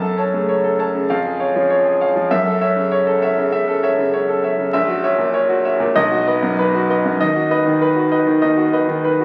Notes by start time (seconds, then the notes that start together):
Already playing: F#2 A5
0.02 A4
0.18 C#5 A5
0.33 C#3 A3
0.49 C#5
0.64 A4
0.79 C#5 A5
0.95 C#3
1.10 F2 F5
1.25 G#4
1.40 C#5 F5
1.55 F3 C#4
1.70 C#5
1.85 G#4
2.01 C#5 F5
2.16 F3
2.31 F#2 E5
2.46 A4
2.61 C#5 E5
2.76 C#3
2.92 C#5
3.07 A4
3.22 C#5 E5
3.37 C#3
3.52 C#3 E5
3.68 A4
3.83 C#5 E5
3.98 C#3
4.13 C#5
4.29 A4
4.44 C#5 E5
4.59 C#3
4.73 A#1 E5
4.88 F#4
5.04 C#5 E5
5.18 A#2
5.34 C#5
5.49 F#4
5.64 C#5 E5
5.80 A#2
5.96 B1 D#5
6.11 F#4
6.27 B4 D#5
6.42 F#2
6.59 B4
6.74 F#4
6.90 B4 D#5
7.05 F#2
7.21 D#2 D#5
7.36 F#4
7.51 B4 D#5
7.66 D#3
7.81 B4
7.96 F#4
8.12 B4 D#5
8.27 D#3
8.42 D#2 D#5
8.57 F#4
8.73 B4 D#5
8.88 D#3
9.04 B4
9.20 F#4